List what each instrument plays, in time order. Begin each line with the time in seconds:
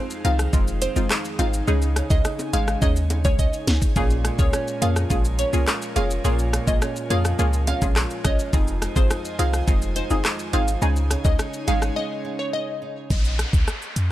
Already playing: nylon-string guitar F2 F3 G#3 C4, synth stab G#3 C4 D#4 F4, analog synth pad D#4 G#4 C5 F5
0.10 maracas, shaker
0.24 808-style bass C2, nylon-string guitar D#3, synth stab G#3 C4 D#4 F4, synth pluck F5, closed hi-hat, shaker
0.39 cross-stick, maracas, shaker
0.53 808-style bass F1, synth stab G#3 C4 D#4 F4, nylon-string guitar G#3, kick, maracas, shaker
0.68 shaker, maracas
0.82 nylon-string guitar C4, synth pluck C5, closed hi-hat, shaker, maracas
0.96 808-style bass F#1, synth stab G#3 C4 D#4 F4, shaker, maracas
1.10 nylon-string guitar G#3, cross-stick, clap, maracas, shaker
1.25 maracas, shaker
1.39 808-style bass G#1, synth stab G#3 C4 D#4 F4, nylon-string guitar C4, synth pluck F5, closed hi-hat, shaker, maracas
1.53 maracas, shaker
1.67 808-style bass C#2, nylon-string guitar C#3 D#4, synth stab G#3 C#4 D#4 G#4, analog synth pad C#5 G#5, maracas, shaker
1.82 shaker, maracas
1.96 nylon-string guitar C#4, cross-stick, closed hi-hat, maracas, shaker
2.10 808-style bass C#2, synth stab G#3 C#4 D#4 G#4, synth pluck D#5, kick, maracas, shaker
2.25 nylon-string guitar D#4, cross-stick, maracas, shaker
2.39 high timbale, maracas, shaker
2.53 808-style bass G#1, synth stab G#3 C#4 D#4 G#4, nylon-string guitar G#3, synth pluck F5, closed hi-hat, maracas, shaker
2.68 cross-stick, maracas, shaker
2.82 808-style bass D#2, synth stab G#3 C#4 D#4 G#4, nylon-string guitar C#4, synth pluck D#5, kick, shaker, maracas
2.96 shaker, maracas
3.10 nylon-string guitar D#4, closed hi-hat, high timbale, shaker, maracas
3.24 808-style bass C#2, synth stab G#3 C#4 D#4 G#4, synth pluck C#5, kick, shaker, maracas
3.39 nylon-string guitar C#4, synth pluck D#5, kick, maracas, shaker
3.53 maracas, shaker
3.67 808-style bass C#2, nylon-string guitar D#4, snare, closed hi-hat, maracas, shaker
3.82 kick, maracas, shaker
3.96 808-style bass A#1, nylon-string guitar A#2 C#4, synth stab A#3 C#4 F4 G#4, analog synth pad F4 A#4, kick, maracas, shaker
4.10 shaker, maracas
4.25 nylon-string guitar G#3, cross-stick, closed hi-hat, maracas, shaker
4.39 808-style bass C#2, synth stab A#3 C#4 F4 G#4, synth pluck C#5, kick, maracas, shaker
4.53 nylon-string guitar C#4, cross-stick, maracas, shaker
4.68 maracas, shaker
4.81 808-style bass F2, nylon-string guitar F3, synth stab A#3 C#4 F4 G#4, synth pluck F5, closed hi-hat, shaker
4.96 cross-stick, maracas, shaker
5.10 808-style bass A#1, nylon-string guitar G#3, synth stab A#3 C#4 F4 G#4, kick, shaker, maracas
5.25 shaker, maracas
5.39 nylon-string guitar C#4, synth pluck C#5, closed hi-hat, shaker, maracas
5.53 808-style bass C2, synth stab A#3 C#4 F4 G#4, shaker, maracas
5.67 nylon-string guitar G#3, cross-stick, clap, maracas, shaker
5.82 shaker, maracas
5.96 808-style bass F1, synth stab A#3 C#4 F4 G#4, nylon-string guitar C#4, synth pluck F5, closed hi-hat, shaker, maracas
6.10 maracas, shaker
6.24 808-style bass A#1, nylon-string guitar A#2 C#4, synth stab A#3 C#4 F4 G#4, maracas, shaker
6.39 shaker, maracas
6.53 nylon-string guitar G#3, cross-stick, closed hi-hat, maracas, shaker
6.67 808-style bass A#1, synth stab A#3 C#4 F4 G#4, synth pluck D#5, kick, maracas, shaker
6.82 nylon-string guitar C#4, cross-stick, maracas, shaker
6.96 maracas, shaker
7.10 808-style bass F2, nylon-string guitar F3, synth stab A#3 C#4 F4 G#4, synth pluck F5, closed hi-hat, shaker
7.25 cross-stick, maracas, shaker
7.39 808-style bass C#2, nylon-string guitar G#3, synth stab A#3 C#4 F4 G#4, shaker, maracas
7.53 shaker, maracas
7.67 nylon-string guitar C#4, synth pluck F5, closed hi-hat, high timbale, shaker, maracas
7.82 808-style bass A#1, synth stab A#3 C#4 F4 G#4, kick, high timbale, shaker, maracas
7.96 nylon-string guitar G#3, cross-stick, clap, maracas, shaker
8.10 shaker, maracas
8.24 808-style bass A#1, nylon-string guitar C#4, synth pluck D#5, kick, cross-stick, closed hi-hat, shaker, maracas
8.39 maracas, shaker
8.53 808-style bass F1, nylon-string guitar F2 D#4, synth stab C4 D#4 F4 G#4, analog synth pad C5 D#5 G#5, kick, maracas, shaker
8.67 shaker, maracas
8.82 nylon-string guitar G#3, cross-stick, closed hi-hat, maracas, shaker
8.96 808-style bass G#1, synth stab C4 D#4 F4 G#4, synth pluck C5, kick, maracas, shaker
9.10 nylon-string guitar D#4, cross-stick, maracas, shaker
9.25 maracas, shaker
9.39 808-style bass C2, nylon-string guitar D#3, synth stab C4 D#4 F4 G#4, synth pluck F5, closed hi-hat, shaker
9.53 cross-stick, maracas, shaker
9.67 808-style bass F1, nylon-string guitar G#3, synth stab C4 D#4 F4 G#4, kick, shaker, maracas
9.82 shaker, maracas
9.96 nylon-string guitar D#4, synth pluck C5, closed hi-hat, shaker, maracas
10.10 808-style bass F#1, synth stab C4 D#4 F4 G#4, shaker, maracas
10.25 nylon-string guitar G#3, cross-stick, clap, maracas, shaker
10.39 shaker, maracas
10.53 808-style bass G#1, synth stab C4 D#4 F4 G#4, nylon-string guitar D#4, synth pluck F5, closed hi-hat, shaker, maracas
10.68 maracas, shaker
10.82 808-style bass C#2, nylon-string guitar C#3 D#4, synth stab G#3 C#4 D#4 G#4, analog synth pad D#4 G#4 C#5 G#5, maracas, shaker
10.96 shaker, maracas
11.11 nylon-string guitar C#4, cross-stick, closed hi-hat, maracas, shaker
11.24 808-style bass C#2, synth stab G#3 C#4 D#4 G#4, synth pluck D#5, kick, maracas, shaker
11.39 nylon-string guitar D#4, cross-stick, maracas, shaker
11.53 maracas, shaker
11.67 808-style bass G#1, synth stab G#3 C#4 D#4 G#4, nylon-string guitar G#3, synth pluck F5, closed hi-hat, maracas, shaker
11.82 cross-stick, maracas, shaker
11.96 nylon-string guitar C#4, synth pluck D#5
12.25 nylon-string guitar D#4
12.39 synth pluck C#5
12.53 nylon-string guitar C#4, synth pluck D#5
12.82 nylon-string guitar D#4
13.10 808-style bass A#1, kick, downlifter, shaker
13.25 shaker
13.39 cross-stick, closed hi-hat, shaker
13.53 808-style bass C#2, kick, shaker
13.68 cross-stick, shaker
13.82 shaker
13.96 808-style bass F2, closed hi-hat, shaker